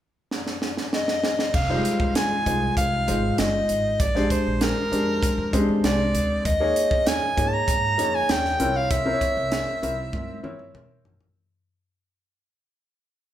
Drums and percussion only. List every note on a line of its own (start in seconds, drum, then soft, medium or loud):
0.31 snare medium
0.47 snare medium
0.62 snare medium
0.77 snare medium
0.93 snare medium
1.08 snare medium
1.24 snare medium
1.39 snare medium
1.54 kick loud
1.54 crash medium
1.85 closed hi-hat medium
2.00 kick medium
2.15 snare loud
2.15 closed hi-hat medium
2.46 kick medium
2.46 closed hi-hat medium
2.77 kick medium
2.77 closed hi-hat medium
3.08 closed hi-hat medium
3.38 snare medium
3.38 closed hi-hat medium
3.69 closed hi-hat medium
4.00 kick loud
4.00 closed hi-hat medium
4.16 snare soft
4.30 kick medium
4.30 closed hi-hat medium
4.61 snare loud
4.61 closed hi-hat medium
4.93 closed hi-hat medium
5.23 kick loud
5.23 closed hi-hat medium
5.53 kick medium
5.53 closed hi-hat medium
5.84 snare loud
5.84 closed hi-hat medium
6.15 closed hi-hat medium
6.45 kick medium
6.45 closed hi-hat medium
6.76 closed hi-hat medium
6.91 kick medium
7.07 snare loud
7.07 closed hi-hat medium
7.38 kick medium
7.38 closed hi-hat medium
7.68 kick medium
7.68 closed hi-hat medium
7.99 closed hi-hat medium
8.29 snare loud
8.29 closed hi-hat medium
8.45 snare soft
8.60 closed hi-hat medium
8.91 kick loud
8.91 closed hi-hat medium
9.21 kick medium
9.21 closed hi-hat medium
9.52 snare loud
9.52 closed hi-hat medium
9.83 closed hi-hat medium
10.13 kick medium
10.13 high tom medium
10.44 mid tom medium
10.59 mid tom medium
10.75 mid tom medium
11.05 floor tom medium
11.21 floor tom medium